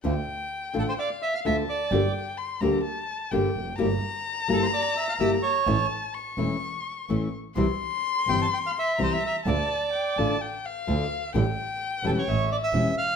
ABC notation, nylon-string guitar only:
X:1
M:4/4
L:1/8
Q:1/4=128
K:Dm
V:1 name="Nylon-string guitar"
[D,A,DF] z2 [D,A,DF] z2 [D,A,DF] z | [D,G,B,DG] z2 [D,G,B,DG] z2 [D,G,B,DG] z | [G,B,EG] z2 [G,B,EG] z2 [G,B,EG] z | [E,A,^CE] z2 [E,A,CE] z2 [E,A,CE] z |
[C,E,G,CE] z2 [C,E,G,CE] z2 [C,E,G,CE] z | [D,A,DF] z2 [D,A,DF] z2 [D,A,DF] z | [D,G,DE] z2 [E,G,^CE] z2 [E,G,CE] z |]